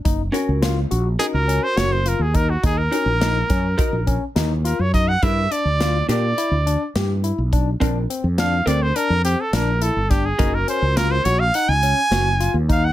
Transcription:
0.05 F#1 D#4, kick, closed hi-hat
0.32 C#4 F#4 A#4, closed hi-hat
0.49 C#2
0.62 F4, snare, closed hi-hat
0.91 A#1 F#4, closed hi-hat
1.19 C#4 D#4 F#4 G#4 A#4, closed hi-hat
1.34 C#2 A#4
1.48 C#4, closed hi-hat
1.63 C5
1.76 F#1 F#4 C#5, snare, closed hi-hat
1.92 C5
2.06 F4 A#4, closed hi-hat
2.19 D#2 G#4
2.34 D#4 A#4, kick, closed hi-hat
2.50 F#4
2.63 D#2 D#4 G#4, kick, closed hi-hat
2.78 A#4
2.91 C#4 D#4 F#4 A#4, closed hi-hat
3.06 A#1
3.21 D#4, snare, closed hi-hat
3.50 F#2 C#4, kick, snare, closed hi-hat
3.78 D#4 F#4 A#4, kick, closed hi-hat
3.93 A#1
4.07 C#4, kick, closed hi-hat
4.35 D#2 D#4, snare, closed hi-hat
4.64 F4 A#4, closed hi-hat
4.79 F#2 C#5
4.93 D#4 D#5, kick, closed hi-hat
5.08 F#5
5.23 G2 D4 E4 G4 A#4 E5, kick, closed hi-hat
5.51 D4 D5, closed hi-hat
5.65 D2
5.80 F4, snare, closed hi-hat
6.08 A#2 D4 G4 A#4 D5, snare, closed hi-hat
6.38 E4, closed hi-hat
6.51 D2
6.66 D4, closed hi-hat
6.95 G2 G4, snare, closed hi-hat
7.24 E4, closed hi-hat
7.38 B1
7.52 D4, kick, closed hi-hat
7.80 A#1 C4 D4 A#4, kick, closed hi-hat
8.10 C4, closed hi-hat
8.24 F2
8.38 D4 F5, snare, closed hi-hat
8.66 D2 C4 D4 A#4 D5, closed hi-hat
8.82 C5
8.96 D4 A#4, closed hi-hat
9.10 F2
9.25 C4 G4, closed hi-hat
9.41 A4
9.53 A#1 D4 A#4, snare, closed hi-hat
9.81 E4 A4, closed hi-hat
9.96 G1
10.10 D4 G4, kick, snare, closed hi-hat
10.26 G#4
10.38 F#1 C#4 D#4 F#4 A#4, kick, closed hi-hat
10.55 A#4
10.68 C#4 C5, closed hi-hat
10.82 C#2
10.97 F4 A#4, snare, closed hi-hat
11.11 C5
11.24 A#1 F#4 C#5, closed hi-hat
11.40 F5
11.54 D#4 F#5, closed hi-hat
11.68 C#2 G#5
11.83 C#4, closed hi-hat
12.11 F#1 F#4, snare, closed hi-hat
12.40 F4, closed hi-hat
12.54 D#2
12.69 D#4 F5, kick, closed hi-hat
12.85 F#5

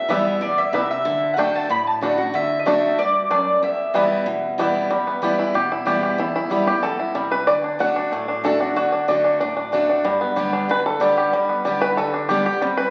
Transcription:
Already playing: E2
0.08 E3 G3 B3 E4 E5
0.41 B2 D5
0.58 E5
0.73 C3 G3 B3 E4 E5
0.91 E5
1.05 D3
1.34 D3 A3 F#5
1.38 A3 D4 F#4 G5
1.56 A5
1.69 A2 B5
1.87 A5
2.01 D3 A3 D4 F#4 F#5
2.18 D4 F#4
2.34 D3 E5
2.59 D#5
2.66 D3 A3 D4 F#4 E5
2.99 G2 D5
3.30 F#2 A3 D4 D5
3.63 E2 E5
3.94 E3 G3 B3 E4
4.26 B2
4.58 E3 G3 B3 E4
4.90 E2 G3
5.07 B3
5.22 E3 G3 B3 E4 G4
5.39 E4
5.54 B2 G4
5.72 E4
5.85 E3 G3 B3 E4 G4
6.03 G4
6.18 E2 E4
6.36 E4
6.50 E3 G3 B3 E4
6.67 B3 E4 G4
6.83 B2 A4
6.99 E4
7.15 C3 G3
7.31 B4
7.47 D3 D5
7.64 D4
7.79 D3 A3 D4 F#4 F#5
7.96 D4
8.12 A2 A3
8.28 D4
8.44 D3 A3 D4 F#4 A4
8.60 D4 F#4
8.76 D3 F#4
8.92 D4
9.08 D3 A3 D4 F#4 D5
9.24 D4
9.40 A2 D4
9.57 D4
9.72 D3 A3 D4 F#4
9.89 D4
10.04 G2 G3
10.21 B3
10.36 D3 G3 B3 G4
10.53 D4
10.69 D3 B4
10.86 A4
11.00 D3 G3 B3 G4
11.17 G4
11.33 G2 G3
11.49 B3
11.65 D3 G3 B3 G4
11.81 B4
11.97 D3 A4
12.14 D4
12.29 D3 G3 B3 G4
12.46 B3 G4
12.62 C3 G3
12.77 B4

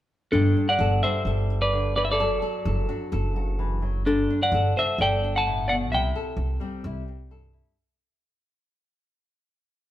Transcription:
0.32 G1 G2 D4 A4
0.57 D4
0.69 D5 F#5
0.79 G1 A4
1.03 G3 D4 C5 E5
1.25 G1 A4
1.50 muted nylon-string guitar stroke
1.62 B4 D5
1.73 D3
1.96 E3 B4 D5
2.05 E5
2.12 A4 D5
2.18 F#1 F#3 A4
2.42 A4
2.65 F#1 A4
2.89 D4 F#4
3.12 F#1 A4
3.36 F#4
3.59 E3
3.82 F#3
4.06 G1 G2 D4 A4, muted nylon-string guitar stroke
4.30 D4
4.42 D5 F#5
4.52 G1 A4
4.77 D4 C5 E5
4.98 G1 A4 D5 G5
5.24 D4
5.36 F#5 A5
5.46 A2
5.68 B2 D5 F#5
5.91 C2 C3 E4 E5 G5
6.15 A4
6.37 C2
6.60 G3 C4
6.84 C2 E4
7.08 C4
7.30 G2 A4
7.53 E4

